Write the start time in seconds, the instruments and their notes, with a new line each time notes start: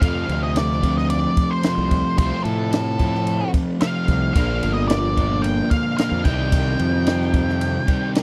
0.01 overdriven electric guitar F2 C3 F3 A3 C4 F4, fingered electric bass F2, lead electric guitar F5, kick, ride
0.29 fingered electric bass D2, ride
0.43 lead electric guitar D#5
0.56 lead electric guitar D5, snare, ride
0.71 snare
0.82 overdriven electric guitar F2 C3 F3 A3 C4 F4, kick, ride
0.98 lead electric guitar D#5, snare
1.10 lead electric guitar D5, ride
1.37 kick, ride
1.50 lead electric guitar C5
1.63 overdriven electric guitar F2 C3 F3 A3 C4, snare, ride
1.67 overdriven electric guitar F4
1.77 fingered electric bass C2
1.91 kick, ride
2.17 fingered electric bass C2, overdriven electric guitar F2 C3 F3 A3 C4 F4, lead electric guitar C5, kick, ride
2.44 fingered electric bass A2, lead electric guitar A4, ride
2.72 snare, ride
2.99 overdriven electric guitar F2 C3 F3 A3 C4 F4, kick, ride
3.15 snare
3.27 ride
3.54 kick, ride
3.80 overdriven electric guitar F2 C3 F3 A3 C4 F4, lead electric guitar F5, snare, ride
4.08 fingered electric bass C2, kick, ride
4.34 fingered electric bass A#1, overdriven electric guitar A#2 D3 F3 A#3 D4 F4, lead electric guitar F5, kick, ride
4.62 fingered electric bass G1, ride
4.74 lead electric guitar D#5
4.88 lead electric guitar D5, snare, ride
5.16 overdriven electric guitar A#2 D3 A#3 D4 F4, kick, ride
5.42 lead electric guitar G5, ride
5.70 lead electric guitar F5, kick, ride
5.97 overdriven electric guitar A#2 D3 A#3 D4 F4, lead electric guitar F5, snare, ride
6.12 fingered electric bass F2
6.24 fingered electric bass C2, overdriven electric guitar C3 D#3 G3 C4 D#4 G4, lead electric guitar G5, kick, ride
6.52 kick, ride
6.79 fingered electric bass F2, ride
7.06 overdriven electric guitar C3 D#3 G3 C4 G4, snare, ride
7.21 snare
7.34 kick, ride
7.49 snare
7.61 ride
7.87 overdriven electric guitar C3 D#3 G3 C4 G4, kick, ride
8.15 snare, ride